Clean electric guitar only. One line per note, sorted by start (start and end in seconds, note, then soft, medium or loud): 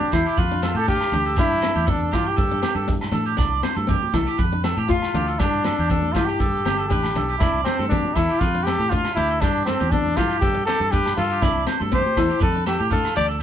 0.00 0.12 G4 medium
0.13 0.26 C5 medium
0.26 0.37 G4 medium
0.38 0.61 B4 medium
0.63 0.75 A4 medium
0.76 0.87 G4 medium
0.88 1.12 F4 medium
1.13 1.26 G4 medium
1.26 1.36 A4 medium
1.37 1.61 G4 medium
1.62 1.75 A4 medium
1.75 1.86 G4 medium
1.87 2.11 A4 medium
2.12 2.24 G4 medium
2.26 2.36 G4 medium
2.37 2.61 A4 medium
2.62 2.75 G4 medium
2.76 2.87 A4 medium
3.13 3.25 A4 medium
3.26 3.37 G4 medium
3.38 3.62 D5 medium
3.63 3.76 C5 medium
3.76 3.88 A4 medium
3.89 4.13 G4 medium
4.14 4.26 A4 medium
4.27 4.38 G4 medium
4.38 4.62 B4 medium
4.64 4.77 A4 medium
4.78 4.89 G4 medium
4.90 5.13 F4 medium
5.15 5.27 G4 medium
5.28 5.39 A4 medium
5.40 5.64 G4 medium
5.65 5.77 A4 medium
5.79 5.90 G4 medium
5.90 6.14 A4 medium
6.16 6.28 G4 medium
6.29 6.40 G4 medium
6.40 6.64 A4 medium
6.65 6.78 G4 medium
6.78 6.90 A4 medium
6.91 7.14 B4 medium
7.17 7.29 A4 medium
7.30 7.40 G4 medium
7.41 7.64 D5 medium
7.66 7.79 C5 medium
7.79 7.90 A4 medium
7.91 8.15 G4 medium
8.17 8.29 A4 medium
8.30 8.41 G4 medium
8.42 8.65 B4 medium
8.67 8.79 A4 medium
8.80 8.91 G4 medium
8.92 9.16 F4 medium
9.17 9.29 G4 medium
9.31 9.42 A4 medium
9.43 9.66 G4 medium
9.68 9.80 A4 medium
9.80 9.91 G4 medium
9.92 10.16 A4 medium
10.17 10.29 G4 medium
10.30 10.41 G4 medium
10.42 10.66 A4 medium
10.68 10.80 G4 medium
10.81 10.92 A4 medium
10.93 11.16 B4 medium
11.19 11.30 A4 medium
11.32 11.42 G4 medium
11.43 11.66 D5 medium
11.67 11.80 C5 medium
11.82 11.92 A4 medium
11.93 12.16 G4 medium
12.17 12.30 A4 medium
12.30 12.41 G4 medium
12.41 12.65 B4 medium
12.66 12.79 A4 medium
12.79 12.91 G4 medium
12.91 13.15 F4 medium
13.15 13.27 G4 medium
13.28 13.40 A4 medium